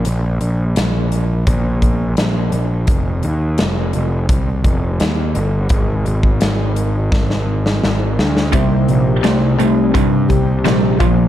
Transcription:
<<
  \new Staff \with { instrumentName = "Twelve-string acoustic guitar" } { \time 4/4 \key c \minor \tempo 4 = 85 r1 | r1 | r1 | <c ees bes c' g'>4 <ees c' g'>4. <bes c' g'>8 <ees bes c' g'>8 <bes d' f'>8 | }
  \new Staff \with { instrumentName = "Distorted electric guitar" } { \clef bass \time 4/4 \key c \minor r1 | r1 | r1 | <c g>4 <c a>8 <c a>8 <c g>4 <c g>8 <bes, f>8 | }
  \new Staff \with { instrumentName = "Overdriven electric guitar" } { \clef bass \time 4/4 \key c \minor r1 | r1 | r1 | <c g>4 <c a>8 <c a>8 <c g>4 <c g>8 <bes, f>8 | }
  \new Staff \with { instrumentName = "Picked electric bass" } { \clef bass \time 4/4 \key c \minor bes,,8 bes,,8 bes,,4 bes,,4 bes,,8 bes,,8 | f,,8 ees,8 f,,8 f,,8 c,8 f,,8 ees,8 g,,8 | aes,,8 aes,,8 aes,,4 aes,,4 aes,,8 d,8 | c,8 bes,,8 c,8 c,8 g,8 c,8 bes,,8 bes,,8 | }
  \new DrumStaff \with { instrumentName = "Drums" } \drummode { \time 4/4 hh8 hh8 <hh sn>8 hh8 <hh bd>8 <hh bd>8 <hh sn>8 hh8 | <hh bd>8 hh8 <hh sn>8 hh8 <hh bd>8 <hh bd>8 <hh sn>8 hh8 | <hh bd>8 hh16 bd16 <hh sn>8 hh8 <bd sn>16 sn8 sn16 sn8 sn16 sn16 | <hh bd>8 hh8 <hh sn>8 hh8 <hh bd>8 <hh bd>8 <hh sn>8 <hh bd>8 | }
>>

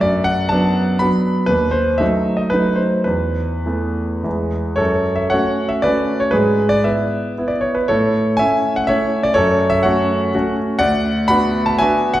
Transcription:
<<
  \new Staff \with { instrumentName = "Grand piano" } { \time 3/4 \key fis \minor \tempo 4 = 119 d''8 fis''8 a''4 b''4 | b'8 c''8 e''8. dis''16 b'8 c''8 | b'2~ b'8 r8 | <a' cis''>8. e''16 <cis'' fis''>8. e''16 <b' d''>8. cis''16 |
<gis' b'>8. d''16 <b' e''>4~ <b' e''>16 d''16 cis''16 b'16 | <a' cis''>4 <e'' gis''>8. fis''16 <cis'' e''>8. d''16 | <a' cis''>8. e''16 <cis'' fis''>4. r8 | <d'' fis''>4 <fis'' b''>8. a''16 <e'' gis''>8. fis''16 | }
  \new Staff \with { instrumentName = "Grand piano" } { \time 3/4 \key fis \minor fis,4 <fis b d'>4 <fis b d'>4 | dis,4 <fis a dis'>4 <fis a dis'>4 | e,4 <e a b>4 <e, e gis b>4 | fis,4 <a cis' fis'>4 <a cis' fis'>4 |
gis,4 <b e'>4 <b e'>4 | a,4 <a cis' e'>4 <a cis' e'>4 | fis,4 <a cis' fis'>4 <a cis' fis'>4 | d,4 <b d' fis'>4 <b d' fis'>4 | }
>>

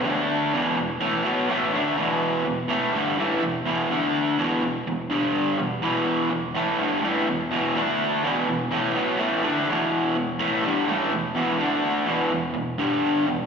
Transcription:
\new Staff \with { instrumentName = "Overdriven electric guitar" } { \clef bass \time 4/4 \key e \minor \tempo 4 = 125 <d a d'>4 <e, b, e>8 <e, b,>8 <a, e a>8 <b, fis b>8 <a, e a>8 <d a d'>8 | <e, b, e>4 <e, b,>8 <a, e a>8 <g, d g>8 <a, e a>8 <e, b,>8 <e, b, e>8 | <d a d'>4 <e, b, e>8 <e, b,>8 <e, b,>8 <g, d g>4 <e, b,>8 | <e, b, e>4 <e, b,>8 <a, e a>8 <g, d g>8 <a, e a>8 <e, b,>8 <e, b, e>8 |
<d a d'>4 <e, b, e>8 <e, b,>8 <a, e a>8 <b, fis b>8 <a, e a>8 <d a d'>8 | <e, b, e>4 <e, b,>8 <a, e a>8 <g, d g>8 <a, e a>8 <e, b,>8 <e, b, e>8 | <d a d'>4 <e, b, e>8 <e, b,>8 <e, b,>8 <g, d g>4 <e, b,>8 | }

